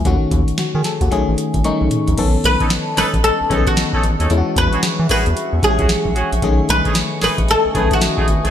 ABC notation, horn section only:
X:1
M:4/4
L:1/16
Q:"Swing 16ths" 1/4=113
K:Bmix
V:1 name="Horn section"
z16 | z3 [CDA] z2 [CDA] z3 [CDA] z2 [CDA] z [CDA] | z3 [CFG] z2 [CFG] z4 [CFG] z2 [CFG] z | z3 [A,CDG] z2 [A,CDG] z3 [A,CDG] z2 [A,CDG] z [A,CDG] |]